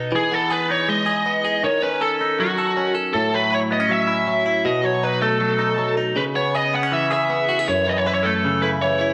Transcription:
Already playing: B2 B3 D#4 A4
0.12 E3 G#4
0.32 B3 A4
0.50 G#4 B4
0.69 D#4 C#5
0.88 G#3 D#5
1.06 G#4
1.26 B3
1.45 G#4
1.64 D#3 C#5
1.82 C#4 B4
2.01 A4
2.21 D#4
2.40 F#3 F#4
2.58 A4
2.77 C#4
2.95 A4
3.13 A2 A4
3.34 F#3 B4
3.52 E4 C#5
3.71 B3 D#5
3.80 C#4
3.89 F#3 E5
4.07 E4
4.27 F#3
4.46 E4
4.65 B2 D#5
4.84 F#3 C#5
5.03 D#4 B4
5.22 A3 A4
5.40 F#3
5.59 D#4
5.78 F#3
5.97 D#4
6.16 C#3 B4
6.35 B3 C#5
6.55 G#4 D#5
6.74 B3 F#5
6.83 C#4
6.92 E3 E5
7.11 G#4 E5
7.30 B3
7.49 F#4
7.59 G#4
7.68 F#2 C#5
7.87 E3 D#5
7.97 C#5
8.06 E4 B4
8.14 C#5
8.23 A3 A4
8.45 C#3
8.62 E4 B4
8.82 E3 C#5
9.01 E4

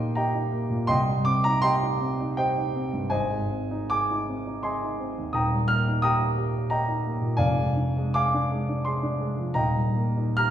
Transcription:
Already playing: D#1 D#2 G3 A#3 G4 A#4 D#5 G5 C6
0.00 D#4
0.15 G4 D#5 G5 A#5
0.35 D#4
0.52 A#3
0.70 A#2
0.87 C2 D#5 G5 C6
1.08 G3
1.25 C4 D6
1.44 D#4 A#5
1.62 G4 D#5 G5 C6
1.83 D#4
2.01 C4
2.20 D#4
2.37 G4 C5 D#5 G5
2.58 D#4
2.76 C4
2.93 G2
3.10 G#1 C5 D#5 G#5
3.31 G#3
3.51 C4
3.71 D#4
3.90 G#4 G#5 D6
4.11 D#4
4.29 C4
4.47 D#4
4.63 G#4 D#5 G#5 C6
4.82 D#4
5.00 C4
5.18 D#2
5.33 D#1 D#2 G5 A#5 D#6
5.52 G3
5.68 A#3 F6
5.87 D#4
6.02 G4 G5 A#5 D#6
6.21 A#4
6.38 G4
6.55 A#4
6.70 G4 D#5 G5 A#5
6.88 D#4
7.05 A#3
7.21 A#2
7.37 F1 F2 D5 F5 G#5
7.57 G#3
7.76 D4
7.97 G#3
8.14 G#4 F5 G#5 D6
8.34 D4
8.52 G#3
8.69 D4
8.85 G#4 C6
9.03 D4
9.21 G#3
9.39 F3
9.54 D#1 D#2 D#5 G5 A#5
9.76 G3
9.96 A#3
10.17 D#4
10.37 G4 A#5 F6

